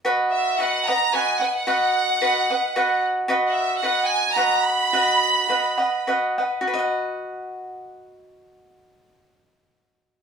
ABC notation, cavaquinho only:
X:1
M:3/4
L:1/8
Q:1/4=107
K:B
V:1 name="Cavaquinho"
[FBdf]2 [FBdf] [Bdf] [FBdf] [Bdf] | [FBdf]2 [FBdf] [Bdf] [FBdf]2 | [FBdf]2 [FBdf]2 [FBdf]2 | [FBdf]2 [FBdf] [Bdf] [FBdf] [Bdf] |
[FBdf]6- | [FBdf]6 |]